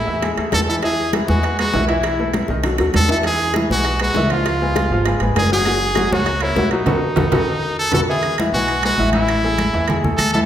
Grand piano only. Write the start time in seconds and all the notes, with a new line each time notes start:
0.07 E3 E4 E5
0.22 G#3 G#4 A4
0.37 A3 G#4 A4
0.68 E3 E4 E5
0.83 E3 E4 E5
1.14 E3 E4 E5
1.29 G#3 G#4 B4
1.59 G#3 G#4 B4
1.74 E3 E4 E5
1.89 E3 E4 E5
2.19 A3 A4 B4
2.50 D#3 D#4 D#5
2.65 F#3 F#4 A4
2.79 F#3 F#4 A4
3.10 E3 E4 E5
3.25 E3 E4 E5
3.55 E3 E4 E5
3.70 G#3 G#4 B4
4.01 G#3 G#4 B4
4.17 E3 E4 E5
4.32 F3 F4 F5
4.62 G#3 G#4 B4
4.92 F3 F4 F5
5.07 G#3 G#4 B4
5.22 G#3 G#4 B4
5.52 F#3 F#4 F#5
5.67 F#3 F#4 F#5
5.96 F#3 F#4 F#5
6.12 A#3 A#4 C#5
6.43 A#3 A#4 C#5
6.58 F#3 F#4 F#5
6.72 F#3 F#4 F#5
6.87 F#4 A4 B4
7.16 F#4 A4 B4
7.33 F#4 A4 B4
7.93 F#4 A4 B4
8.09 E3 E4 E5
8.39 E3 E4 E5
8.54 G#3 G#4 B4
8.85 G#3 G#4 B4
8.99 E3 E4 E5
9.15 E3 E4 E5
9.44 A3 G#4 A4
9.74 E3 E4 E5
9.88 G#3 G#4 A4
10.04 A3 G#4 A4
10.34 E3 E4 E5